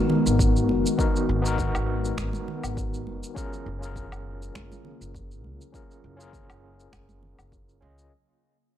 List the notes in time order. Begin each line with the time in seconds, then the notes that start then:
Already playing: D#3 G#3 B3 D#4 F#4 A#4
0.10 low conga
0.26 G#1, shaker
0.39 kick, shaker
0.56 shaker
0.69 F#1, high conga
0.86 shaker
0.97 B3 D#4 F#4 A#4, kick, shaker
1.16 shaker
1.29 G#1
1.42 B3 D#4
1.46 F#4 A#4, shaker
1.58 kick, shaker
1.75 G#1, low woodblock, shaker
2.05 shaker
2.18 G#1, finger snap, kick, high conga, shaker
2.33 high conga, shaker
2.48 low conga
2.64 G#1, low woodblock, shaker
2.77 kick, shaker
2.94 shaker
3.07 F#1, high conga
3.23 shaker
3.35 C#3 F#3 A#3 C#4 F4 G#4 A#4, kick, shaker
3.53 shaker
3.66 F#1
3.79 C#4 F4
3.83 G#4 A#4, shaker
3.96 kick, shaker
4.12 F#1, low woodblock, shaker
4.42 shaker
4.55 F#1, finger snap, kick, high conga, shaker
4.72 high conga, shaker
4.85 low conga
5.01 F#1, shaker
5.15 kick, shaker
5.31 shaker
5.44 C#2, high conga
5.61 shaker
5.72 C#4 F4 G#4 A#4, kick, shaker
5.91 shaker
6.04 F#1
6.17 C#4 F4
6.21 G#4 A#4, shaker
6.33 kick, shaker
6.50 F#1, low woodblock, shaker
6.80 shaker
6.93 F#1, finger snap, kick, high conga, low woodblock, shaker
7.09 high conga, shaker
7.23 low conga
7.39 F#1, low woodblock, shaker
7.52 kick, shaker
7.69 shaker
7.80 C#2 C#4 F4 G#4 D#5, high conga
7.98 shaker